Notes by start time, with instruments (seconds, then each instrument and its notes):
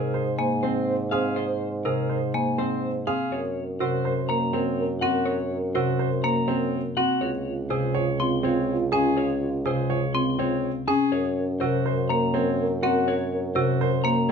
Already playing: bassoon G#2, marimba C3, grand piano G#4, clean electric guitar A#4
0.14 grand piano C5, french horn C5
0.39 marimba A#3, french horn C5, clean electric guitar G#5
0.63 grand piano C4, clean electric guitar C5, french horn C5
0.87 french horn C5
1.11 marimba C4, grand piano G#4, french horn C5, clean electric guitar F5
1.36 clean electric guitar C5, french horn C5
1.61 french horn C5
1.85 marimba C3, grand piano G#4, clean electric guitar A#4, french horn C5
2.09 grand piano C5, french horn C5
2.34 marimba A#3, french horn C5, clean electric guitar G#5
2.58 grand piano C4, clean electric guitar C5, french horn C5
2.83 french horn C5
3.07 marimba C4, grand piano G#4, clean electric guitar F5
3.32 bassoon F#2, french horn A#4, clean electric guitar C#5
3.57 french horn A#4
3.80 marimba C3, grand piano F#4, french horn A#4, clean electric guitar C5
4.05 french horn A#4, grand piano C5
4.29 marimba A#3, french horn A#4, clean electric guitar A#5
4.53 grand piano C4, french horn A#4, clean electric guitar C#5
4.79 french horn A#4
5.01 marimba C4, grand piano F#4, french horn A#4, clean electric guitar F#5
5.26 french horn A#4, clean electric guitar C#5
5.52 french horn A#4
5.75 marimba C3, grand piano F#4, french horn A#4, clean electric guitar C5
5.99 french horn A#4, grand piano C5
6.24 marimba A#3, french horn A#4, clean electric guitar A#5
6.48 grand piano C4, french horn A#4, clean electric guitar C#5
6.73 french horn A#4
6.97 marimba C4, grand piano F#4, clean electric guitar F#5
7.21 bassoon C#2, french horn F4, clean electric guitar C#5
7.46 french horn F4
7.70 marimba C3, french horn F4, grand piano G#4, clean electric guitar C5
7.95 french horn F4, grand piano C#5
8.19 marimba C4, french horn F4, clean electric guitar C6
8.43 grand piano C4, french horn F4, clean electric guitar C#5
8.69 french horn F4
8.92 marimba C#4, french horn F4, grand piano G#4, clean electric guitar G#5
9.17 french horn F4, clean electric guitar C#5
9.41 french horn F4
9.66 marimba C3, french horn F4, grand piano G#4, clean electric guitar C5
9.90 french horn F4, grand piano C#5
10.14 marimba C4, french horn F4, clean electric guitar C6
10.38 grand piano C4, french horn F4, clean electric guitar C#5
10.63 french horn F4
10.88 marimba C#4, grand piano G#4, clean electric guitar G#5
11.12 bassoon F#2, french horn A#4, clean electric guitar C#5
11.37 french horn A#4
11.60 marimba C3, grand piano F#4, french horn A#4, clean electric guitar C5
11.85 french horn A#4, grand piano C5
12.09 marimba A#3, french horn A#4, clean electric guitar A#5
12.34 grand piano C4, french horn A#4, clean electric guitar C#5
12.59 french horn A#4
12.83 marimba C4, grand piano F#4, french horn A#4, clean electric guitar F#5
13.08 french horn A#4, clean electric guitar C#5
13.33 french horn A#4
13.55 marimba C3, grand piano F#4, french horn A#4, clean electric guitar C5
13.81 french horn A#4, grand piano C5
14.04 marimba A#3, french horn A#4, clean electric guitar A#5